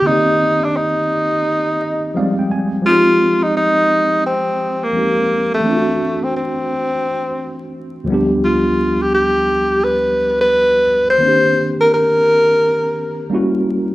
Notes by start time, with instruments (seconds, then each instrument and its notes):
0.02 tine electric piano D3 A#3
0.07 tine electric piano D#3 C4 D5, tenor saxophone D#4
0.12 tine electric piano G4
0.64 tenor saxophone D4
0.77 tenor saxophone D#4
1.82 tine electric piano D#5
2.14 tine electric piano F3 G#3 C4 D5 F5
2.19 tine electric piano G3
2.39 tine electric piano G5
2.51 tine electric piano G#5
2.82 tine electric piano F3 G#3
2.86 tine electric piano C4 D#4, tenor saxophone F4
2.92 tine electric piano G4
3.43 tenor saxophone D#4
3.57 tenor saxophone D#4
4.26 tenor saxophone C4
4.84 tenor saxophone A#3
4.93 tine electric piano F3 G#3 C4 D#4
4.98 tine electric piano G4
5.54 tenor saxophone A3
5.60 tine electric piano E3 A3
5.65 tine electric piano C4 D4
5.70 tine electric piano F4
5.77 tine electric piano F#4
6.24 tenor saxophone C4
6.36 tenor saxophone C4
8.04 tine electric piano D2 F3 G3
8.10 tine electric piano B3 D4 G4
8.44 tenor saxophone F4
9.02 tenor saxophone G4
9.15 tenor saxophone G4
9.84 tenor saxophone B4
10.41 tenor saxophone B4
11.10 tenor saxophone C5
11.18 tine electric piano D#3 A#3
11.23 tine electric piano C4 D4
11.28 tine electric piano G4
11.81 tenor saxophone A#4
11.94 tenor saxophone A#4
13.30 tine electric piano G3 A#3 C#4 E4
13.35 tine electric piano F#4